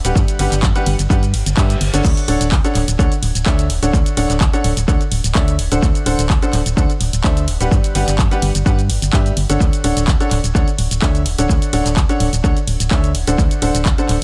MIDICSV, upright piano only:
0, 0, Header, 1, 2, 480
1, 0, Start_track
1, 0, Key_signature, 2, "major"
1, 0, Tempo, 472441
1, 158, Time_signature, 4, 2, 24, 8
1, 14465, End_track
2, 0, Start_track
2, 0, Title_t, "Upright piano"
2, 0, Program_c, 0, 0
2, 48, Note_on_c, 0, 55, 84
2, 48, Note_on_c, 0, 62, 72
2, 48, Note_on_c, 0, 67, 76
2, 48, Note_on_c, 0, 71, 73
2, 48, Note_on_c, 0, 78, 90
2, 372, Note_off_c, 0, 55, 0
2, 372, Note_off_c, 0, 62, 0
2, 372, Note_off_c, 0, 67, 0
2, 372, Note_off_c, 0, 71, 0
2, 372, Note_off_c, 0, 78, 0
2, 399, Note_on_c, 0, 55, 93
2, 399, Note_on_c, 0, 62, 81
2, 399, Note_on_c, 0, 67, 86
2, 399, Note_on_c, 0, 71, 79
2, 399, Note_on_c, 0, 78, 100
2, 573, Note_off_c, 0, 55, 0
2, 573, Note_off_c, 0, 62, 0
2, 573, Note_off_c, 0, 67, 0
2, 573, Note_off_c, 0, 71, 0
2, 573, Note_off_c, 0, 78, 0
2, 768, Note_on_c, 0, 55, 96
2, 768, Note_on_c, 0, 62, 92
2, 768, Note_on_c, 0, 67, 91
2, 768, Note_on_c, 0, 71, 90
2, 768, Note_on_c, 0, 78, 113
2, 931, Note_off_c, 0, 62, 0
2, 932, Note_off_c, 0, 55, 0
2, 932, Note_off_c, 0, 67, 0
2, 932, Note_off_c, 0, 71, 0
2, 932, Note_off_c, 0, 78, 0
2, 1119, Note_on_c, 0, 55, 96
2, 1119, Note_on_c, 0, 62, 90
2, 1119, Note_on_c, 0, 67, 92
2, 1119, Note_on_c, 0, 71, 88
2, 1119, Note_on_c, 0, 78, 109
2, 1232, Note_off_c, 0, 71, 0
2, 1233, Note_off_c, 0, 55, 0
2, 1233, Note_off_c, 0, 62, 0
2, 1233, Note_off_c, 0, 67, 0
2, 1233, Note_off_c, 0, 78, 0
2, 1598, Note_on_c, 0, 55, 90
2, 1598, Note_on_c, 0, 62, 90
2, 1598, Note_on_c, 0, 67, 82
2, 1598, Note_on_c, 0, 71, 86
2, 1599, Note_on_c, 0, 76, 97
2, 1773, Note_off_c, 0, 55, 0
2, 1773, Note_off_c, 0, 62, 0
2, 1773, Note_off_c, 0, 67, 0
2, 1773, Note_off_c, 0, 71, 0
2, 1773, Note_off_c, 0, 76, 0
2, 1967, Note_on_c, 0, 50, 78
2, 1967, Note_on_c, 0, 62, 72
2, 1967, Note_on_c, 0, 69, 76
2, 1967, Note_on_c, 0, 73, 78
2, 1967, Note_on_c, 0, 78, 89
2, 2291, Note_off_c, 0, 50, 0
2, 2291, Note_off_c, 0, 62, 0
2, 2291, Note_off_c, 0, 69, 0
2, 2291, Note_off_c, 0, 78, 0
2, 2292, Note_off_c, 0, 73, 0
2, 2317, Note_on_c, 0, 50, 90
2, 2317, Note_on_c, 0, 69, 88
2, 2318, Note_on_c, 0, 62, 85
2, 2318, Note_on_c, 0, 73, 82
2, 2318, Note_on_c, 0, 78, 98
2, 2493, Note_off_c, 0, 50, 0
2, 2493, Note_off_c, 0, 62, 0
2, 2493, Note_off_c, 0, 69, 0
2, 2493, Note_off_c, 0, 73, 0
2, 2493, Note_off_c, 0, 78, 0
2, 2687, Note_on_c, 0, 50, 101
2, 2687, Note_on_c, 0, 62, 88
2, 2687, Note_on_c, 0, 69, 88
2, 2687, Note_on_c, 0, 73, 90
2, 2687, Note_on_c, 0, 78, 108
2, 2851, Note_off_c, 0, 50, 0
2, 2851, Note_off_c, 0, 62, 0
2, 2851, Note_off_c, 0, 69, 0
2, 2851, Note_off_c, 0, 73, 0
2, 2851, Note_off_c, 0, 78, 0
2, 3038, Note_on_c, 0, 50, 97
2, 3038, Note_on_c, 0, 62, 91
2, 3038, Note_on_c, 0, 69, 95
2, 3038, Note_on_c, 0, 73, 95
2, 3038, Note_on_c, 0, 78, 111
2, 3152, Note_off_c, 0, 50, 0
2, 3152, Note_off_c, 0, 62, 0
2, 3152, Note_off_c, 0, 69, 0
2, 3152, Note_off_c, 0, 73, 0
2, 3152, Note_off_c, 0, 78, 0
2, 3518, Note_on_c, 0, 50, 93
2, 3518, Note_on_c, 0, 62, 87
2, 3518, Note_on_c, 0, 69, 87
2, 3518, Note_on_c, 0, 73, 87
2, 3518, Note_on_c, 0, 76, 104
2, 3693, Note_off_c, 0, 50, 0
2, 3693, Note_off_c, 0, 62, 0
2, 3693, Note_off_c, 0, 69, 0
2, 3693, Note_off_c, 0, 73, 0
2, 3693, Note_off_c, 0, 76, 0
2, 3887, Note_on_c, 0, 50, 84
2, 3887, Note_on_c, 0, 62, 76
2, 3887, Note_on_c, 0, 69, 77
2, 3887, Note_on_c, 0, 73, 75
2, 3887, Note_on_c, 0, 78, 87
2, 4211, Note_off_c, 0, 50, 0
2, 4211, Note_off_c, 0, 62, 0
2, 4211, Note_off_c, 0, 69, 0
2, 4211, Note_off_c, 0, 73, 0
2, 4211, Note_off_c, 0, 78, 0
2, 4238, Note_on_c, 0, 50, 93
2, 4238, Note_on_c, 0, 62, 84
2, 4238, Note_on_c, 0, 69, 83
2, 4238, Note_on_c, 0, 73, 85
2, 4238, Note_on_c, 0, 78, 106
2, 4413, Note_off_c, 0, 50, 0
2, 4413, Note_off_c, 0, 62, 0
2, 4413, Note_off_c, 0, 69, 0
2, 4413, Note_off_c, 0, 73, 0
2, 4413, Note_off_c, 0, 78, 0
2, 4607, Note_on_c, 0, 50, 100
2, 4607, Note_on_c, 0, 62, 89
2, 4607, Note_on_c, 0, 69, 88
2, 4607, Note_on_c, 0, 73, 87
2, 4607, Note_on_c, 0, 78, 108
2, 4771, Note_off_c, 0, 50, 0
2, 4771, Note_off_c, 0, 62, 0
2, 4771, Note_off_c, 0, 69, 0
2, 4771, Note_off_c, 0, 73, 0
2, 4771, Note_off_c, 0, 78, 0
2, 4957, Note_on_c, 0, 69, 91
2, 4958, Note_on_c, 0, 50, 98
2, 4958, Note_on_c, 0, 62, 93
2, 4958, Note_on_c, 0, 73, 90
2, 4958, Note_on_c, 0, 78, 105
2, 5072, Note_off_c, 0, 50, 0
2, 5072, Note_off_c, 0, 62, 0
2, 5072, Note_off_c, 0, 69, 0
2, 5072, Note_off_c, 0, 73, 0
2, 5072, Note_off_c, 0, 78, 0
2, 5438, Note_on_c, 0, 50, 93
2, 5438, Note_on_c, 0, 62, 83
2, 5438, Note_on_c, 0, 69, 84
2, 5438, Note_on_c, 0, 73, 83
2, 5438, Note_on_c, 0, 76, 108
2, 5613, Note_off_c, 0, 50, 0
2, 5613, Note_off_c, 0, 62, 0
2, 5613, Note_off_c, 0, 69, 0
2, 5613, Note_off_c, 0, 73, 0
2, 5613, Note_off_c, 0, 76, 0
2, 5807, Note_on_c, 0, 50, 81
2, 5807, Note_on_c, 0, 62, 77
2, 5807, Note_on_c, 0, 69, 73
2, 5807, Note_on_c, 0, 72, 76
2, 5807, Note_on_c, 0, 78, 92
2, 6131, Note_off_c, 0, 50, 0
2, 6131, Note_off_c, 0, 62, 0
2, 6131, Note_off_c, 0, 69, 0
2, 6131, Note_off_c, 0, 72, 0
2, 6131, Note_off_c, 0, 78, 0
2, 6158, Note_on_c, 0, 50, 90
2, 6158, Note_on_c, 0, 69, 84
2, 6158, Note_on_c, 0, 72, 86
2, 6159, Note_on_c, 0, 62, 81
2, 6159, Note_on_c, 0, 78, 106
2, 6333, Note_off_c, 0, 50, 0
2, 6333, Note_off_c, 0, 62, 0
2, 6333, Note_off_c, 0, 69, 0
2, 6333, Note_off_c, 0, 72, 0
2, 6333, Note_off_c, 0, 78, 0
2, 6528, Note_on_c, 0, 50, 95
2, 6528, Note_on_c, 0, 62, 89
2, 6528, Note_on_c, 0, 69, 92
2, 6528, Note_on_c, 0, 72, 93
2, 6528, Note_on_c, 0, 78, 109
2, 6692, Note_off_c, 0, 50, 0
2, 6692, Note_off_c, 0, 62, 0
2, 6692, Note_off_c, 0, 69, 0
2, 6692, Note_off_c, 0, 72, 0
2, 6692, Note_off_c, 0, 78, 0
2, 6879, Note_on_c, 0, 50, 98
2, 6879, Note_on_c, 0, 62, 92
2, 6879, Note_on_c, 0, 69, 88
2, 6879, Note_on_c, 0, 72, 92
2, 6879, Note_on_c, 0, 78, 109
2, 6992, Note_off_c, 0, 62, 0
2, 6993, Note_off_c, 0, 50, 0
2, 6993, Note_off_c, 0, 69, 0
2, 6993, Note_off_c, 0, 72, 0
2, 6993, Note_off_c, 0, 78, 0
2, 7359, Note_on_c, 0, 50, 96
2, 7359, Note_on_c, 0, 62, 85
2, 7359, Note_on_c, 0, 69, 88
2, 7359, Note_on_c, 0, 72, 87
2, 7359, Note_on_c, 0, 76, 104
2, 7533, Note_off_c, 0, 62, 0
2, 7533, Note_off_c, 0, 69, 0
2, 7533, Note_off_c, 0, 72, 0
2, 7533, Note_off_c, 0, 76, 0
2, 7534, Note_off_c, 0, 50, 0
2, 7728, Note_on_c, 0, 55, 80
2, 7728, Note_on_c, 0, 62, 74
2, 7728, Note_on_c, 0, 67, 74
2, 7728, Note_on_c, 0, 71, 74
2, 7728, Note_on_c, 0, 78, 87
2, 8052, Note_off_c, 0, 55, 0
2, 8052, Note_off_c, 0, 62, 0
2, 8052, Note_off_c, 0, 67, 0
2, 8052, Note_off_c, 0, 71, 0
2, 8052, Note_off_c, 0, 78, 0
2, 8078, Note_on_c, 0, 55, 91
2, 8078, Note_on_c, 0, 62, 84
2, 8078, Note_on_c, 0, 67, 84
2, 8078, Note_on_c, 0, 71, 84
2, 8078, Note_on_c, 0, 78, 101
2, 8253, Note_off_c, 0, 55, 0
2, 8253, Note_off_c, 0, 62, 0
2, 8253, Note_off_c, 0, 67, 0
2, 8253, Note_off_c, 0, 71, 0
2, 8253, Note_off_c, 0, 78, 0
2, 8447, Note_on_c, 0, 55, 98
2, 8447, Note_on_c, 0, 62, 93
2, 8447, Note_on_c, 0, 67, 95
2, 8447, Note_on_c, 0, 71, 91
2, 8447, Note_on_c, 0, 78, 110
2, 8611, Note_off_c, 0, 55, 0
2, 8611, Note_off_c, 0, 62, 0
2, 8611, Note_off_c, 0, 67, 0
2, 8611, Note_off_c, 0, 71, 0
2, 8611, Note_off_c, 0, 78, 0
2, 8798, Note_on_c, 0, 55, 101
2, 8798, Note_on_c, 0, 62, 90
2, 8798, Note_on_c, 0, 67, 88
2, 8798, Note_on_c, 0, 71, 92
2, 8798, Note_on_c, 0, 78, 112
2, 8912, Note_off_c, 0, 55, 0
2, 8912, Note_off_c, 0, 62, 0
2, 8912, Note_off_c, 0, 67, 0
2, 8912, Note_off_c, 0, 71, 0
2, 8912, Note_off_c, 0, 78, 0
2, 9278, Note_on_c, 0, 55, 95
2, 9278, Note_on_c, 0, 62, 87
2, 9278, Note_on_c, 0, 67, 88
2, 9278, Note_on_c, 0, 71, 83
2, 9278, Note_on_c, 0, 76, 101
2, 9453, Note_off_c, 0, 55, 0
2, 9453, Note_off_c, 0, 62, 0
2, 9453, Note_off_c, 0, 67, 0
2, 9453, Note_off_c, 0, 71, 0
2, 9453, Note_off_c, 0, 76, 0
2, 9647, Note_on_c, 0, 50, 79
2, 9647, Note_on_c, 0, 62, 75
2, 9648, Note_on_c, 0, 69, 77
2, 9648, Note_on_c, 0, 73, 72
2, 9648, Note_on_c, 0, 78, 92
2, 9972, Note_off_c, 0, 50, 0
2, 9972, Note_off_c, 0, 62, 0
2, 9972, Note_off_c, 0, 69, 0
2, 9972, Note_off_c, 0, 73, 0
2, 9972, Note_off_c, 0, 78, 0
2, 9998, Note_on_c, 0, 50, 93
2, 9998, Note_on_c, 0, 62, 82
2, 9998, Note_on_c, 0, 69, 86
2, 9998, Note_on_c, 0, 73, 85
2, 9998, Note_on_c, 0, 78, 101
2, 10173, Note_off_c, 0, 50, 0
2, 10173, Note_off_c, 0, 62, 0
2, 10173, Note_off_c, 0, 69, 0
2, 10173, Note_off_c, 0, 73, 0
2, 10173, Note_off_c, 0, 78, 0
2, 10367, Note_on_c, 0, 50, 96
2, 10367, Note_on_c, 0, 62, 94
2, 10367, Note_on_c, 0, 69, 87
2, 10367, Note_on_c, 0, 73, 88
2, 10367, Note_on_c, 0, 78, 106
2, 10531, Note_off_c, 0, 50, 0
2, 10531, Note_off_c, 0, 62, 0
2, 10531, Note_off_c, 0, 69, 0
2, 10531, Note_off_c, 0, 73, 0
2, 10531, Note_off_c, 0, 78, 0
2, 10718, Note_on_c, 0, 50, 97
2, 10718, Note_on_c, 0, 62, 90
2, 10718, Note_on_c, 0, 69, 92
2, 10719, Note_on_c, 0, 73, 93
2, 10719, Note_on_c, 0, 78, 113
2, 10832, Note_off_c, 0, 50, 0
2, 10832, Note_off_c, 0, 62, 0
2, 10832, Note_off_c, 0, 69, 0
2, 10832, Note_off_c, 0, 73, 0
2, 10832, Note_off_c, 0, 78, 0
2, 11198, Note_on_c, 0, 50, 93
2, 11198, Note_on_c, 0, 62, 85
2, 11198, Note_on_c, 0, 69, 91
2, 11198, Note_on_c, 0, 73, 85
2, 11198, Note_on_c, 0, 76, 102
2, 11373, Note_off_c, 0, 50, 0
2, 11373, Note_off_c, 0, 62, 0
2, 11373, Note_off_c, 0, 69, 0
2, 11373, Note_off_c, 0, 73, 0
2, 11373, Note_off_c, 0, 76, 0
2, 11567, Note_on_c, 0, 50, 86
2, 11567, Note_on_c, 0, 62, 72
2, 11567, Note_on_c, 0, 69, 74
2, 11567, Note_on_c, 0, 73, 75
2, 11567, Note_on_c, 0, 78, 90
2, 11891, Note_off_c, 0, 50, 0
2, 11891, Note_off_c, 0, 62, 0
2, 11891, Note_off_c, 0, 69, 0
2, 11891, Note_off_c, 0, 73, 0
2, 11891, Note_off_c, 0, 78, 0
2, 11918, Note_on_c, 0, 50, 90
2, 11918, Note_on_c, 0, 62, 82
2, 11918, Note_on_c, 0, 69, 84
2, 11918, Note_on_c, 0, 73, 87
2, 11918, Note_on_c, 0, 78, 105
2, 12093, Note_off_c, 0, 50, 0
2, 12093, Note_off_c, 0, 62, 0
2, 12093, Note_off_c, 0, 69, 0
2, 12093, Note_off_c, 0, 73, 0
2, 12093, Note_off_c, 0, 78, 0
2, 12287, Note_on_c, 0, 62, 91
2, 12287, Note_on_c, 0, 69, 88
2, 12287, Note_on_c, 0, 73, 91
2, 12287, Note_on_c, 0, 78, 113
2, 12288, Note_on_c, 0, 50, 97
2, 12451, Note_off_c, 0, 50, 0
2, 12451, Note_off_c, 0, 62, 0
2, 12451, Note_off_c, 0, 69, 0
2, 12451, Note_off_c, 0, 73, 0
2, 12451, Note_off_c, 0, 78, 0
2, 12638, Note_on_c, 0, 50, 104
2, 12638, Note_on_c, 0, 62, 89
2, 12638, Note_on_c, 0, 69, 92
2, 12638, Note_on_c, 0, 73, 91
2, 12638, Note_on_c, 0, 78, 112
2, 12752, Note_off_c, 0, 50, 0
2, 12752, Note_off_c, 0, 62, 0
2, 12752, Note_off_c, 0, 69, 0
2, 12752, Note_off_c, 0, 73, 0
2, 12752, Note_off_c, 0, 78, 0
2, 13118, Note_on_c, 0, 50, 92
2, 13118, Note_on_c, 0, 62, 86
2, 13118, Note_on_c, 0, 69, 87
2, 13118, Note_on_c, 0, 73, 88
2, 13118, Note_on_c, 0, 76, 104
2, 13293, Note_off_c, 0, 50, 0
2, 13293, Note_off_c, 0, 62, 0
2, 13293, Note_off_c, 0, 69, 0
2, 13293, Note_off_c, 0, 73, 0
2, 13293, Note_off_c, 0, 76, 0
2, 13488, Note_on_c, 0, 50, 82
2, 13488, Note_on_c, 0, 62, 73
2, 13488, Note_on_c, 0, 69, 77
2, 13488, Note_on_c, 0, 72, 75
2, 13488, Note_on_c, 0, 78, 92
2, 13812, Note_off_c, 0, 50, 0
2, 13812, Note_off_c, 0, 62, 0
2, 13812, Note_off_c, 0, 69, 0
2, 13812, Note_off_c, 0, 72, 0
2, 13812, Note_off_c, 0, 78, 0
2, 13838, Note_on_c, 0, 62, 84
2, 13839, Note_on_c, 0, 50, 93
2, 13839, Note_on_c, 0, 69, 83
2, 13839, Note_on_c, 0, 72, 86
2, 13839, Note_on_c, 0, 78, 100
2, 14013, Note_off_c, 0, 50, 0
2, 14013, Note_off_c, 0, 62, 0
2, 14013, Note_off_c, 0, 69, 0
2, 14013, Note_off_c, 0, 72, 0
2, 14013, Note_off_c, 0, 78, 0
2, 14207, Note_on_c, 0, 50, 96
2, 14207, Note_on_c, 0, 62, 87
2, 14207, Note_on_c, 0, 69, 88
2, 14207, Note_on_c, 0, 72, 94
2, 14207, Note_on_c, 0, 78, 107
2, 14371, Note_off_c, 0, 50, 0
2, 14371, Note_off_c, 0, 62, 0
2, 14371, Note_off_c, 0, 69, 0
2, 14371, Note_off_c, 0, 72, 0
2, 14371, Note_off_c, 0, 78, 0
2, 14465, End_track
0, 0, End_of_file